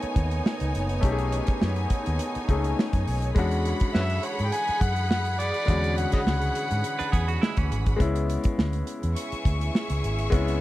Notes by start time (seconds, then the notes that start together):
Already playing: D#3 A3 B3 C#4 D#4 G#4 C#5 G#5
0.02 muted fingered electric bass stroke, closed hi-hat
0.16 D#2, kick, closed hi-hat
0.31 closed hi-hat
0.46 snare
0.60 C#2, closed hi-hat
0.75 F#1, closed hi-hat
0.89 closed hi-hat
1.01 B1 A3 C#4 D#4 G#4, kick, closed hi-hat
1.05 G4
1.12 G#4
1.18 closed hi-hat
1.32 closed hi-hat
1.47 kick, closed hi-hat
1.62 F#2, snare
1.76 closed hi-hat
1.90 kick, closed hi-hat
2.06 D#2, closed hi-hat
2.19 closed hi-hat
2.35 muted fingered electric bass stroke, closed hi-hat
2.48 C#2 A3 C#4 D#4 G#4, kick, closed hi-hat
2.64 closed hi-hat
2.79 snare
2.93 F#2, kick, closed hi-hat
3.07 B1, open hi-hat
3.22 closed hi-hat
3.35 E2 D3 E3 G#3 C#4 D4 G#4 F#5 B5, kick, closed hi-hat
3.39 F#4
3.51 closed hi-hat
3.65 closed hi-hat
3.80 kick, closed hi-hat
3.94 F#2 B4 C#5 E5, snare
4.10 closed hi-hat
4.23 C#5, closed hi-hat
4.39 G#2, closed hi-hat
4.46 G5
4.52 G#5, closed hi-hat
4.68 muted fingered electric bass stroke, closed hi-hat
4.81 F#2 F#5, kick, closed hi-hat
4.96 closed hi-hat
5.10 F#5, snare
5.25 closed hi-hat
5.40 D5, closed hi-hat
5.54 closed hi-hat
5.65 E2 D3 G#3 C#4, kick, closed hi-hat
5.69 F#4
5.84 closed hi-hat
5.98 F#5, closed hi-hat
6.12 C#5 D#5 F#5, kick, closed hi-hat
6.26 C#2, snare
6.41 closed hi-hat
6.55 closed hi-hat
6.71 G#2, closed hi-hat
6.84 closed hi-hat
6.99 D4 B4, muted fingered electric bass stroke, closed hi-hat
7.12 E2 B3 G#4, kick, closed hi-hat
7.28 F#4, closed hi-hat
7.41 G#3 E4, snare
7.57 D2 E3 C#4, kick, closed hi-hat
7.72 G#1, closed hi-hat
7.86 kick, closed hi-hat
7.96 C#2 C#3 G#3 B3 C#4 E4, kick, closed hi-hat
8.01 E4
8.15 closed hi-hat
8.30 closed hi-hat
8.44 kick, closed hi-hat
8.58 D2, snare
8.73 closed hi-hat
8.87 closed hi-hat
9.03 E2, closed hi-hat
9.15 G#4 E5 C#6, closed hi-hat
9.32 muted fingered electric bass stroke, closed hi-hat
9.45 D2, kick, closed hi-hat
9.61 closed hi-hat
9.75 snare
9.90 C#2, closed hi-hat
10.04 G#1, closed hi-hat
10.19 closed hi-hat
10.30 C#2 G#3 B3 C#4, kick, closed hi-hat
10.34 E4
10.48 closed hi-hat